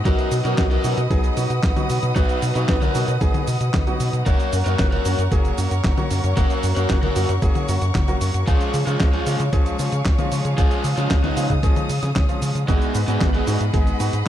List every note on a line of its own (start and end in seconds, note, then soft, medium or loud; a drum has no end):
0.00 4.22 D#5 medium
0.00 8.43 F#5 medium
0.05 0.15 B1 loud
0.05 0.42 F#3 loud
0.05 0.42 B3 medium
0.05 0.42 D#4 medium
0.05 0.42 F#4 loud
0.05 0.32 F#4 medium
0.05 0.32 A#4 medium
0.05 4.22 B4 medium
0.05 4.22 D#6 medium
0.05 kick loud
0.05 closed hi-hat medium
0.05 cabasa soft
0.19 closed hi-hat soft
0.19 cabasa soft
0.32 0.41 B2 loud
0.32 open hi-hat loud
0.32 cabasa medium
0.45 0.55 B2 loud
0.45 0.81 F#3 medium
0.45 0.81 B3 medium
0.45 0.81 D#4 medium
0.45 0.62 F#4 medium
0.45 0.81 F#4 medium
0.45 0.62 A#4 medium
0.45 closed hi-hat soft
0.45 cabasa soft
0.58 0.78 B1 loud
0.58 kick loud
0.58 snare loud
0.58 clap loud
0.58 closed hi-hat medium
0.58 cabasa soft
0.71 0.98 F#4 medium
0.71 0.98 A#4 medium
0.71 closed hi-hat soft
0.84 0.94 B2 loud
0.84 0.98 F#3 medium
0.84 0.98 B3 medium
0.84 0.98 D#4 medium
0.84 0.98 F#4 loud
0.84 open hi-hat loud
0.84 cabasa medium
0.98 1.07 B2 loud
0.98 closed hi-hat soft
0.98 cabasa soft
1.10 1.30 B1 medium
1.10 1.34 F#3 loud
1.10 1.34 B3 medium
1.10 1.34 D#4 medium
1.10 1.34 G#4 loud
1.10 kick loud
1.10 closed hi-hat medium
1.10 cabasa soft
1.24 closed hi-hat soft
1.24 cabasa soft
1.37 1.47 B2 medium
1.37 1.50 F#3 medium
1.37 1.50 B3 medium
1.37 1.50 D#4 medium
1.37 1.50 F#4 medium
1.37 open hi-hat loud
1.37 cabasa medium
1.50 1.60 B2 medium
1.50 closed hi-hat soft
1.50 cabasa soft
1.63 1.73 B1 medium
1.63 kick loud
1.63 snare loud
1.63 clap loud
1.63 closed hi-hat medium
1.63 cabasa soft
1.76 2.13 F#3 medium
1.76 2.13 B3 medium
1.76 2.13 D#4 medium
1.76 2.13 F#4 loud
1.76 closed hi-hat soft
1.76 high tom medium
1.76 cabasa soft
1.90 1.99 B2 medium
1.90 open hi-hat loud
1.90 cabasa medium
2.03 2.13 B2 loud
2.03 closed hi-hat soft
2.03 cabasa soft
2.16 2.26 B1 loud
2.16 2.52 F#3 loud
2.16 2.52 B3 medium
2.16 2.52 D#4 medium
2.16 2.42 D#4 medium
2.16 2.52 F#4 loud
2.16 2.42 B4 medium
2.16 kick loud
2.16 closed hi-hat medium
2.16 cabasa soft
2.29 closed hi-hat soft
2.29 cabasa soft
2.42 2.52 B2 loud
2.42 open hi-hat loud
2.42 cabasa medium
2.55 2.65 B2 loud
2.55 2.92 F#3 medium
2.55 2.92 B3 medium
2.55 2.73 D#4 medium
2.55 2.92 D#4 medium
2.55 2.92 F#4 medium
2.55 2.73 B4 medium
2.55 closed hi-hat soft
2.55 cabasa soft
2.68 2.88 B1 loud
2.68 kick loud
2.68 snare loud
2.68 clap loud
2.68 closed hi-hat medium
2.68 cabasa soft
2.82 3.08 A#4 medium
2.82 3.08 C#5 medium
2.82 closed hi-hat soft
2.82 high tom medium
2.82 cabasa soft
2.95 3.05 B2 loud
2.95 3.08 F#3 medium
2.95 3.08 B3 medium
2.95 3.08 D#4 medium
2.95 3.08 F#4 medium
2.95 open hi-hat loud
2.95 cabasa medium
3.08 3.18 B2 loud
3.08 closed hi-hat soft
3.08 cabasa soft
3.21 3.31 B1 medium
3.21 3.44 F#3 loud
3.21 3.44 B3 medium
3.21 3.44 D#4 medium
3.21 3.44 G#4 loud
3.21 kick loud
3.21 closed hi-hat medium
3.21 cabasa soft
3.34 closed hi-hat soft
3.34 high tom medium
3.34 cabasa soft
3.47 3.57 B2 loud
3.47 open hi-hat loud
3.47 cabasa medium
3.61 3.70 B2 loud
3.61 closed hi-hat soft
3.61 cabasa soft
3.74 3.84 B1 medium
3.74 kick loud
3.74 snare loud
3.74 clap loud
3.74 closed hi-hat medium
3.74 high tom medium
3.74 cabasa soft
3.87 4.23 F#3 medium
3.87 4.23 B3 medium
3.87 4.23 D#4 medium
3.87 4.23 F#4 medium
3.87 closed hi-hat soft
3.87 cabasa soft
4.00 4.10 B2 medium
4.00 open hi-hat loud
4.00 cabasa medium
4.13 4.23 B2 medium
4.13 closed hi-hat soft
4.13 cabasa soft
4.26 4.36 F#1 loud
4.26 4.63 F#3 medium
4.26 4.63 A#3 medium
4.26 4.63 C#4 medium
4.26 4.63 F#4 loud
4.26 4.53 A#4 medium
4.26 8.43 A#4 medium
4.26 8.44 C#5 medium
4.26 4.53 C#5 medium
4.26 10.54 C#6 medium
4.26 kick loud
4.26 closed hi-hat medium
4.26 cabasa soft
4.40 closed hi-hat soft
4.40 cabasa soft
4.53 4.63 F#2 loud
4.53 open hi-hat loud
4.53 cabasa medium
4.66 4.76 F#2 loud
4.66 5.02 F#3 medium
4.66 5.02 A#3 medium
4.66 5.02 C#4 medium
4.66 5.02 F#4 medium
4.66 4.83 A#4 medium
4.66 4.83 C#5 medium
4.66 closed hi-hat soft
4.66 cabasa soft
4.79 4.99 F#1 loud
4.79 kick loud
4.79 snare loud
4.79 clap loud
4.79 closed hi-hat medium
4.79 cabasa soft
4.92 5.19 A#4 medium
4.92 5.19 C#5 medium
4.92 closed hi-hat soft
5.05 5.15 F#2 loud
5.05 5.19 F#3 medium
5.05 5.19 A#3 medium
5.05 5.19 C#4 medium
5.05 5.19 F#4 medium
5.05 open hi-hat loud
5.05 cabasa medium
5.18 5.28 F#2 loud
5.18 closed hi-hat soft
5.18 cabasa soft
5.32 5.51 F#1 medium
5.32 5.55 F#3 loud
5.32 5.55 A#3 medium
5.32 5.55 C#4 medium
5.32 5.55 G#4 loud
5.32 kick loud
5.32 closed hi-hat medium
5.32 cabasa soft
5.45 closed hi-hat soft
5.45 cabasa soft
5.58 5.68 F#2 medium
5.58 5.71 F#3 medium
5.58 5.71 A#3 medium
5.58 5.71 C#4 medium
5.58 5.71 F#4 medium
5.58 open hi-hat loud
5.58 cabasa medium
5.71 5.81 F#2 medium
5.71 closed hi-hat soft
5.71 cabasa soft
5.84 5.94 F#1 loud
5.84 kick loud
5.84 snare loud
5.84 clap loud
5.84 closed hi-hat medium
5.84 cabasa soft
5.98 6.34 F#3 medium
5.98 6.34 A#3 medium
5.98 6.34 C#4 medium
5.98 6.34 F#4 loud
5.98 closed hi-hat soft
5.98 high tom medium
5.98 cabasa soft
6.11 6.21 F#2 medium
6.11 open hi-hat loud
6.11 cabasa medium
6.24 6.34 F#2 loud
6.24 closed hi-hat soft
6.24 cabasa soft
6.37 6.47 F#1 loud
6.37 6.73 F#3 medium
6.37 6.73 A#3 medium
6.37 6.73 C#4 medium
6.37 6.63 F#4 medium
6.37 6.73 F#4 loud
6.37 6.63 A#4 medium
6.37 kick loud
6.37 closed hi-hat medium
6.37 cabasa soft
6.50 closed hi-hat soft
6.50 cabasa soft
6.63 6.73 F#2 loud
6.63 open hi-hat loud
6.63 cabasa medium
6.76 6.86 F#2 loud
6.76 7.13 F#3 medium
6.76 7.13 A#3 medium
6.76 7.13 C#4 medium
6.76 6.94 F#4 medium
6.76 7.13 F#4 medium
6.76 6.94 A#4 medium
6.76 closed hi-hat soft
6.76 cabasa soft
6.90 7.09 F#1 loud
6.90 kick loud
6.90 snare loud
6.90 clap medium
6.90 closed hi-hat medium
6.90 cabasa soft
7.03 7.29 F#4 medium
7.03 7.29 A#4 medium
7.03 closed hi-hat soft
7.03 high tom medium
7.16 7.26 F#2 loud
7.16 7.29 F#3 medium
7.16 7.29 A#3 medium
7.16 7.29 C#4 medium
7.16 7.29 F#4 loud
7.16 open hi-hat loud
7.16 cabasa medium
7.29 7.39 F#2 loud
7.29 closed hi-hat soft
7.29 cabasa soft
7.42 7.52 F#1 medium
7.42 7.65 F#3 loud
7.42 7.65 A#3 medium
7.42 7.65 C#4 medium
7.42 7.65 G#4 loud
7.42 kick loud
7.42 closed hi-hat medium
7.42 cabasa soft
7.55 closed hi-hat soft
7.55 high tom medium
7.55 cabasa soft
7.69 7.78 F#2 loud
7.69 7.82 F#3 medium
7.69 7.82 A#3 medium
7.69 7.82 C#4 medium
7.69 7.82 F#4 medium
7.69 open hi-hat loud
7.69 cabasa medium
7.82 7.92 F#2 loud
7.82 closed hi-hat soft
7.82 cabasa soft
7.95 8.15 F#1 loud
7.95 kick loud
7.95 snare loud
7.95 clap loud
7.95 closed hi-hat loud
7.95 high tom medium
7.95 cabasa soft
8.08 8.44 F#3 medium
8.08 8.44 A#3 medium
8.08 8.44 C#4 medium
8.08 8.44 F#4 loud
8.08 closed hi-hat soft
8.08 cabasa soft
8.21 8.31 F#2 medium
8.21 open hi-hat loud
8.21 cabasa medium
8.34 8.44 F#2 medium
8.34 closed hi-hat soft
8.34 cabasa soft
8.47 8.57 C#2 loud
8.47 8.84 F3 loud
8.47 8.84 G#3 medium
8.47 8.84 C#4 medium
8.47 8.74 F4 medium
8.47 8.84 F4 loud
8.47 12.64 G#4 medium
8.47 8.74 G#4 medium
8.47 12.64 C#5 medium
8.47 12.64 F5 medium
8.47 kick loud
8.47 closed hi-hat loud
8.47 cabasa soft
8.61 closed hi-hat soft
8.61 cabasa soft
8.74 8.84 C#3 loud
8.74 open hi-hat loud
8.74 cabasa medium
8.87 8.97 C#3 loud
8.87 9.23 F3 medium
8.87 9.23 G#3 medium
8.87 9.23 C#4 medium
8.87 9.05 F4 medium
8.87 9.23 F4 medium
8.87 9.05 G#4 medium
8.87 closed hi-hat soft
8.87 cabasa soft
9.00 9.20 C#2 loud
9.00 kick loud
9.00 snare loud
9.00 clap loud
9.00 closed hi-hat loud
9.00 cabasa soft
9.13 9.40 F4 medium
9.13 9.40 G#4 medium
9.13 closed hi-hat soft
9.26 9.36 C#3 loud
9.26 9.40 F3 medium
9.26 9.40 G#3 medium
9.26 9.40 C#4 medium
9.26 9.40 F4 loud
9.26 open hi-hat loud
9.26 cabasa medium
9.40 9.50 C#3 loud
9.40 closed hi-hat soft
9.40 cabasa soft
9.53 9.72 C#2 medium
9.53 9.76 F3 loud
9.53 9.76 G#3 medium
9.53 9.76 C#4 medium
9.53 9.76 G#4 loud
9.53 kick loud
9.53 closed hi-hat medium
9.53 cabasa soft
9.66 closed hi-hat soft
9.66 cabasa soft
9.79 9.89 C#3 medium
9.79 9.92 F3 medium
9.79 9.92 G#3 medium
9.79 9.92 C#4 medium
9.79 9.92 F4 medium
9.79 open hi-hat loud
9.79 cabasa medium
9.92 10.02 C#3 medium
9.92 closed hi-hat soft
9.92 cabasa soft
10.05 10.15 C#2 medium
10.05 kick loud
10.05 snare loud
10.05 clap loud
10.05 closed hi-hat loud
10.05 cabasa soft
10.19 10.55 F3 medium
10.19 10.55 G#3 medium
10.19 10.55 C#4 medium
10.19 10.55 F4 medium
10.19 closed hi-hat soft
10.19 high tom medium
10.19 cabasa soft
10.32 10.42 C#3 medium
10.32 open hi-hat loud
10.32 cabasa medium
10.45 10.55 C#3 loud
10.45 closed hi-hat soft
10.45 cabasa soft
10.58 10.68 C#2 loud
10.58 10.94 F3 medium
10.58 10.94 G#3 medium
10.58 10.94 C#4 medium
10.58 10.84 F4 medium
10.58 10.94 F4 loud
10.58 10.84 G#4 medium
10.58 12.66 D#6 medium
10.58 kick loud
10.58 closed hi-hat loud
10.58 cabasa soft
10.71 closed hi-hat soft
10.71 cabasa soft
10.84 10.94 C#3 loud
10.84 open hi-hat loud
10.84 cabasa medium
10.97 11.07 C#3 loud
10.97 11.34 F3 medium
10.97 11.34 G#3 medium
10.97 11.15 C#4 medium
10.97 11.34 C#4 medium
10.97 11.34 F4 medium
10.97 11.15 F4 medium
10.97 closed hi-hat soft
10.97 cabasa soft
11.11 11.30 C#2 loud
11.11 kick loud
11.11 snare loud
11.11 clap loud
11.11 closed hi-hat loud
11.11 cabasa soft
11.24 11.50 B3 medium
11.24 11.50 D#4 medium
11.24 closed hi-hat soft
11.24 high tom medium
11.37 11.47 C#3 loud
11.37 11.50 F3 medium
11.37 11.50 G#3 medium
11.37 11.50 C#4 medium
11.37 11.50 F4 medium
11.37 open hi-hat loud
11.37 cabasa medium
11.50 11.60 C#3 loud
11.50 kick medium
11.50 closed hi-hat soft
11.50 cabasa soft
11.63 11.73 C#2 medium
11.63 11.86 F3 loud
11.63 11.86 G#3 medium
11.63 11.86 C#4 medium
11.63 11.86 G#4 loud
11.63 kick loud
11.63 closed hi-hat loud
11.63 cabasa soft
11.76 closed hi-hat soft
11.76 high tom medium
11.76 cabasa soft
11.89 11.99 C#3 loud
11.89 open hi-hat loud
11.89 cabasa medium
12.03 12.13 C#3 loud
12.03 snare soft
12.03 closed hi-hat soft
12.03 cabasa soft
12.16 12.26 C#2 medium
12.16 kick loud
12.16 snare loud
12.16 clap loud
12.16 closed hi-hat loud
12.16 high tom medium
12.16 cabasa soft
12.29 12.65 F3 medium
12.29 12.65 G#3 medium
12.29 12.65 C#4 medium
12.29 12.65 F4 medium
12.29 closed hi-hat soft
12.29 cabasa soft
12.42 12.52 C#3 medium
12.42 open hi-hat loud
12.42 cabasa medium
12.55 12.65 C#3 medium
12.55 closed hi-hat soft
12.55 cabasa soft
12.68 12.78 G#1 loud
12.68 13.05 G#3 loud
12.68 13.05 B3 medium
12.68 12.95 B3 medium
12.68 13.05 D#4 medium
12.68 13.05 F#4 loud
12.68 14.28 G#4 medium
12.68 12.95 G#4 medium
12.68 14.28 D#5 medium
12.68 14.28 F#5 medium
12.68 14.28 B5 medium
12.68 kick loud
12.68 closed hi-hat loud
12.68 cabasa soft
12.82 closed hi-hat soft
12.82 cabasa soft
12.95 13.05 G#2 loud
12.95 open hi-hat loud
12.95 cabasa medium
13.08 13.18 G#2 loud
13.08 13.44 G#3 medium
13.08 13.44 B3 medium
13.08 13.26 B3 medium
13.08 13.44 D#4 medium
13.08 13.44 F#4 medium
13.08 13.26 G#4 medium
13.08 closed hi-hat soft
13.08 cabasa soft
13.21 13.41 G#1 loud
13.21 kick loud
13.21 snare loud
13.21 clap loud
13.21 closed hi-hat loud
13.21 cabasa soft
13.34 13.61 B3 medium
13.34 13.61 G#4 medium
13.34 closed hi-hat soft
13.47 13.57 G#2 loud
13.47 13.61 G#3 medium
13.47 13.61 B3 medium
13.47 13.61 D#4 medium
13.47 13.61 F#4 loud
13.47 open hi-hat loud
13.47 cabasa medium
13.61 13.71 G#2 loud
13.61 closed hi-hat soft
13.61 cabasa soft
13.74 13.93 G#1 medium
13.74 13.97 G#3 loud
13.74 13.97 B3 medium
13.74 13.97 D#4 medium
13.74 13.97 G#4 loud
13.74 kick loud
13.74 closed hi-hat loud
13.74 cabasa soft
13.87 closed hi-hat soft
13.87 cabasa soft
14.00 14.10 G#2 medium
14.00 14.13 G#3 medium
14.00 14.13 B3 medium
14.00 14.13 D#4 medium
14.00 14.13 F#4 medium
14.00 open hi-hat loud
14.00 cabasa medium
14.13 14.23 G#2 medium
14.13 closed hi-hat soft
14.13 cabasa soft